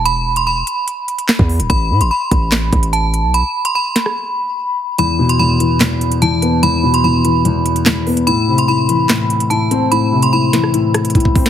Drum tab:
HH |x-----x-----x---x---x-x-----o-x-|x-----x-----x-------x-x-x---x---|x-----x-----x-------------------|x-----x-----x-------x-x-x---x---|
CP |------------------------x-------|----------------x---------------|--------------------------------|----------------x---------------|
SD |------------------------o-------|----------------o---------------|------------o-r-----------------|----------------o---------------|
BD |--------------------------o-----|o-----------o-------o-----------|--------------------------------|--------------------------------|

HH |x-----x-----x---x---x-x-----o-x-|x-----x-----x-------x-x-x---x---|x-----x-----x---x---x-xxxx--o-x-|
CP |------------------------x-------|----------------x---------------|--------------------------------|
SD |------------------------o-------|----------------o---------------|------------o-r-----r---------o-|
BD |--------------------------------|--------------------------------|------------------------o-o-o---|